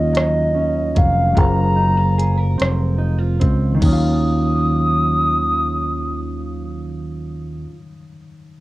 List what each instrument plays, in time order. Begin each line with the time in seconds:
Already playing: fingered electric bass D#2, tine electric piano D#3 F#3 A#3 C#5 F5, clean electric guitar D#3 C#4 F4, soft synth lead D#5
0.13 clean electric guitar F#3, cross-stick, closed hi-hat
0.55 clean electric guitar C#4
0.95 fingered electric bass F1, clean electric guitar F#3, soft synth lead F5, kick, closed hi-hat
1.33 tine electric piano F#3 F4, clean electric guitar F#3
1.37 fingered electric bass F#1, tine electric piano G#4 A#4, soft synth lead A#5, kick, closed hi-hat
1.41 tine electric piano C5 F5
1.76 clean electric guitar D#4
1.97 clean electric guitar F4
2.18 clean electric guitar G#4, closed hi-hat
2.38 clean electric guitar A#4
2.58 fingered electric bass F1, clean electric guitar C4, cross-stick, closed hi-hat
2.98 clean electric guitar D#4
3.19 clean electric guitar F4
3.40 fingered electric bass C#2, clean electric guitar C4, kick, closed hi-hat
3.72 tine electric piano D#3, clean electric guitar D#3
3.77 clean electric guitar F#3, tine electric piano D#4
3.82 fingered electric bass D#2, tine electric piano F#3, clean electric guitar C#4, soft synth lead D#6, kick, crash
3.88 clean electric guitar F4, tine electric piano C#5
3.93 tine electric piano F5